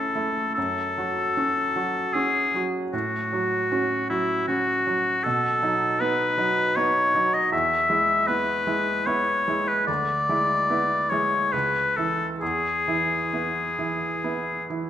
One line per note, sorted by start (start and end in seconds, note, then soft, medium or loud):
0.00 0.52 C#2 soft
0.00 0.15 A3 soft
0.00 0.59 C#4 soft
0.00 0.15 E4 soft
0.00 0.54 A4 soft
0.15 0.53 A3 soft
0.15 0.53 E4 soft
0.55 2.90 F#2 soft
0.55 2.15 A4 soft
0.98 1.33 F#3 soft
0.98 1.33 F#4 soft
1.37 1.72 C#4 soft
1.37 1.72 F#4 soft
1.76 2.11 F#3 soft
1.76 2.11 F#4 soft
2.14 2.50 C#4 soft
2.14 2.50 F#4 soft
2.14 2.66 G#4 medium
2.54 2.90 F#3 soft
2.54 2.90 F#4 soft
2.92 5.21 A2 soft
2.92 4.06 F#4 soft
3.33 3.68 F#3 soft
3.33 3.68 F#4 soft
3.72 4.06 C#4 soft
3.72 4.07 F#4 soft
4.10 4.45 F#3 soft
4.10 4.47 E4 soft
4.10 4.45 F#4 soft
4.48 4.83 C#4 soft
4.48 5.25 F#4 medium
4.48 4.83 F#4 soft
4.87 5.21 F#3 soft
4.87 5.21 F#4 soft
5.24 7.49 B2 soft
5.24 6.02 A4 medium
5.62 5.96 F#3 soft
5.62 5.97 D#4 soft
6.00 6.35 B3 soft
6.00 6.35 D#4 soft
6.00 6.78 B4 medium
6.38 6.72 F#3 soft
6.38 6.72 D#4 soft
6.76 7.11 B3 soft
6.76 7.11 D#4 soft
6.76 7.36 C#5 medium
7.14 7.48 F#3 soft
7.14 7.49 D#4 soft
7.34 7.51 D#5 medium
7.52 9.83 E2 soft
7.52 8.29 E5 medium
7.90 8.24 G#3 soft
7.90 8.25 E4 soft
8.27 8.63 B3 soft
8.27 8.63 E4 soft
8.27 9.08 B4 medium
8.67 9.03 G#3 soft
8.67 9.03 E4 soft
9.07 9.43 B3 soft
9.07 9.43 E4 soft
9.07 9.70 C#5 medium
9.48 9.84 G#3 soft
9.48 9.84 E4 soft
9.68 9.87 B4 medium
9.87 11.49 D2 soft
9.87 11.12 D5 medium
10.29 10.66 G#3 soft
10.29 10.66 E4 soft
10.70 11.07 B3 soft
10.70 11.07 E4 soft
11.10 11.49 G#3 soft
11.10 11.50 E4 soft
11.10 11.54 C#5 medium
11.53 12.38 C#2 soft
11.53 11.98 B4 medium
11.96 12.38 E3 soft
11.96 12.38 E4 soft
11.96 12.27 A4 soft
12.40 14.90 E2 soft
12.40 14.65 G#4 soft
12.88 13.29 E3 soft
12.88 13.29 E4 soft
13.33 13.74 B3 soft
13.33 13.74 E4 soft
13.79 14.20 E3 soft
13.79 14.20 E4 soft
14.24 14.66 B3 soft
14.24 14.66 E4 soft
14.70 14.90 E3 soft
14.70 14.90 E4 soft